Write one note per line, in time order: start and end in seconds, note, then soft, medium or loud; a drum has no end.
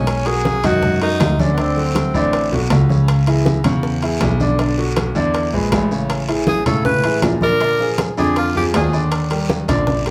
0.00 0.58 B1 medium
0.00 0.28 C#4 medium
0.07 high bongo medium
0.07 high conga soft
0.07 high timbale medium
0.07 long guiro medium
0.26 0.57 F#3 medium
0.26 0.58 F#4 medium
0.26 0.67 G#4 loud
0.26 0.58 A#4 medium
0.26 high conga soft
0.26 high timbale medium
0.45 high bongo medium
0.45 high conga medium
0.45 low timbale medium
0.45 short guiro medium
0.64 1.16 F#2 medium
0.64 0.95 D#3 loud
0.64 0.95 D#4 medium
0.64 1.02 F#4 loud
0.64 0.95 D#5 medium
0.64 high conga soft
0.64 low conga medium
0.64 high timbale medium
0.64 short guiro medium
0.83 high bongo medium
0.83 high conga soft
0.83 low conga medium
0.83 long guiro medium
1.02 1.33 F#3 medium
1.02 1.41 D#4 loud
1.02 1.33 F#4 medium
1.02 1.33 A#4 medium
1.02 high conga soft
1.02 high timbale medium
1.20 2.08 D2 medium
1.20 high bongo medium
1.20 low bongo medium
1.20 high conga medium
1.20 high timbale medium
1.20 low timbale medium
1.20 short guiro medium
1.39 1.55 D3 medium
1.39 1.51 C#4 medium
1.39 1.55 D4 medium
1.39 1.55 D5 medium
1.39 high conga medium
1.39 short guiro medium
1.53 1.61 B3 medium
1.58 1.74 D3 medium
1.58 2.72 C4 medium
1.58 1.74 D4 medium
1.58 1.74 D5 medium
1.58 high bongo medium
1.58 high conga soft
1.58 high timbale medium
1.58 long guiro medium
1.76 2.07 F#3 medium
1.76 2.08 F#4 medium
1.76 2.08 A4 medium
1.76 high bongo soft
1.76 high conga soft
1.95 high bongo medium
1.95 high conga medium
1.95 high timbale medium
1.95 low timbale medium
1.95 short guiro medium
2.14 2.49 A1 medium
2.14 2.46 D3 medium
2.14 2.46 D4 medium
2.14 2.46 D5 medium
2.14 high conga soft
2.14 short guiro medium
2.33 high bongo medium
2.33 high conga soft
2.33 high timbale medium
2.33 long guiro medium
2.52 2.69 B1 medium
2.52 2.68 F#3 medium
2.52 2.68 F#4 medium
2.52 2.68 A4 medium
2.52 high bongo soft
2.52 high conga soft
2.70 3.59 C#2 loud
2.70 2.86 F#3 medium
2.70 2.86 F#4 medium
2.70 2.87 A4 medium
2.70 high bongo medium
2.70 low bongo medium
2.70 high conga soft
2.70 high timbale loud
2.70 low timbale medium
2.70 short guiro medium
2.89 3.20 C#3 medium
2.89 3.21 C#4 medium
2.89 3.21 C#5 medium
2.89 high bongo soft
2.89 high conga medium
2.89 short guiro medium
3.08 high bongo medium
3.08 high conga soft
3.08 high timbale loud
3.08 long guiro medium
3.27 3.58 E3 medium
3.27 3.58 E4 medium
3.27 3.59 G#4 medium
3.27 high conga soft
3.27 high timbale medium
3.46 high bongo medium
3.46 high conga loud
3.46 low timbale medium
3.46 short guiro medium
3.64 4.17 E2 medium
3.64 3.96 C#3 medium
3.64 3.96 C#4 loud
3.64 3.96 C#5 loud
3.64 high conga soft
3.64 low conga medium
3.64 high timbale medium
3.64 short guiro medium
3.83 high bongo medium
3.83 high conga soft
3.83 long guiro medium
4.03 4.33 E3 medium
4.03 4.34 E4 medium
4.03 4.34 G#4 medium
4.03 high conga soft
4.03 high timbale medium
4.21 5.10 B1 loud
4.21 high bongo medium
4.21 low bongo medium
4.21 high conga medium
4.21 high timbale medium
4.21 low timbale medium
4.21 short guiro medium
4.40 4.56 D3 medium
4.40 4.56 D4 medium
4.40 4.56 D5 medium
4.40 high conga medium
4.40 short guiro medium
4.59 4.75 D3 medium
4.59 4.75 D4 medium
4.59 4.75 D5 medium
4.59 high bongo medium
4.59 high conga soft
4.59 high timbale medium
4.59 long guiro medium
4.78 5.09 F#3 medium
4.78 5.09 F#4 medium
4.78 5.09 A4 medium
4.78 high bongo soft
4.78 high conga soft
4.96 high bongo medium
4.96 high conga medium
4.96 high timbale medium
4.96 low timbale medium
4.96 short guiro medium
5.15 5.50 E2 loud
5.15 5.47 D3 medium
5.15 5.47 D4 medium
5.15 5.47 D5 medium
5.15 high conga soft
5.15 short guiro medium
5.34 high bongo medium
5.34 high conga soft
5.34 high timbale medium
5.34 long guiro medium
5.53 5.71 A#1 medium
5.53 5.69 G#3 medium
5.53 5.69 G#4 medium
5.53 5.69 B4 medium
5.53 high bongo soft
5.53 high conga soft
5.72 6.60 A1 medium
5.72 5.87 G#3 medium
5.72 5.87 G#4 medium
5.72 5.88 B4 medium
5.72 high bongo medium
5.72 low bongo medium
5.72 high conga soft
5.72 high timbale loud
5.72 low timbale medium
5.72 short guiro medium
5.91 6.22 C#3 medium
5.91 6.22 C#4 medium
5.91 6.22 C#5 medium
5.91 high bongo soft
5.91 short guiro medium
6.09 high bongo medium
6.09 high conga soft
6.09 high timbale medium
6.09 long guiro medium
6.29 6.60 E3 medium
6.29 6.60 E4 medium
6.29 6.60 G#4 medium
6.29 high conga soft
6.29 high timbale medium
6.47 6.65 G#4 loud
6.47 high bongo medium
6.47 high conga medium
6.47 low timbale medium
6.66 7.19 A2 medium
6.66 6.97 C#3 medium
6.66 6.98 C#4 medium
6.66 6.84 A4 medium
6.66 6.98 C#5 medium
6.66 high conga soft
6.66 low conga medium
6.66 high timbale medium
6.66 short guiro medium
6.85 7.20 B4 loud
6.85 high bongo medium
6.85 high conga soft
6.85 low conga medium
6.85 long guiro medium
7.04 7.35 E3 medium
7.04 7.35 E4 medium
7.04 7.35 G#4 medium
7.04 high conga soft
7.04 high timbale medium
7.22 8.11 A#2 medium
7.22 high bongo medium
7.22 low bongo medium
7.22 high conga medium
7.22 high timbale loud
7.22 low timbale medium
7.22 short guiro medium
7.41 7.57 D3 medium
7.41 7.58 D4 medium
7.41 7.95 A#4 loud
7.41 7.58 D5 medium
7.41 high conga medium
7.41 short guiro medium
7.61 7.76 D3 medium
7.61 7.76 D4 medium
7.61 7.77 D5 medium
7.61 high bongo medium
7.61 high conga soft
7.61 high timbale medium
7.61 long guiro medium
7.79 8.10 F3 medium
7.79 8.11 F4 medium
7.79 8.11 G#4 medium
7.79 high bongo soft
7.79 high conga soft
7.98 high bongo medium
7.98 high conga medium
7.98 high timbale medium
7.98 low timbale medium
7.98 short guiro medium
8.17 8.53 F2 loud
8.17 8.48 D3 medium
8.17 8.49 D4 medium
8.17 8.35 G#4 medium
8.17 8.49 D5 medium
8.17 high conga soft
8.17 short guiro medium
8.36 8.55 F4 medium
8.36 high bongo medium
8.36 high conga soft
8.36 high timbale medium
8.36 long guiro medium
8.55 8.73 F2 medium
8.55 8.71 F3 medium
8.55 8.71 F4 medium
8.55 8.65 G4 medium
8.55 8.71 G#4 medium
8.55 high bongo soft
8.55 high conga soft
8.74 9.63 D#2 medium
8.74 8.90 F3 medium
8.74 8.90 F4 medium
8.74 8.90 G#4 medium
8.74 9.01 G#4 medium
8.74 high bongo medium
8.74 low bongo medium
8.74 high conga soft
8.74 high timbale loud
8.74 low timbale medium
8.74 short guiro medium
8.93 9.24 D3 medium
8.93 9.24 D4 medium
8.93 9.24 D5 medium
8.93 high bongo soft
8.93 short guiro medium
9.12 high bongo medium
9.12 high conga soft
9.12 high timbale loud
9.12 long guiro medium
9.31 9.62 G3 medium
9.31 9.62 G4 medium
9.31 9.62 A#4 medium
9.31 high conga soft
9.31 high timbale medium
9.49 high bongo medium
9.49 high conga medium
9.49 low timbale medium
9.49 short guiro medium
9.68 10.11 A#1 medium
9.68 9.99 D3 medium
9.68 10.00 D4 loud
9.68 9.99 D5 medium
9.68 high conga soft
9.68 low conga medium
9.68 high timbale medium
9.68 short guiro medium
9.87 high bongo medium
9.87 high conga soft
9.87 low conga medium
9.87 long guiro medium
10.06 10.11 G3 medium
10.06 10.11 G4 medium
10.06 10.11 A#4 medium
10.06 high conga soft
10.06 high timbale medium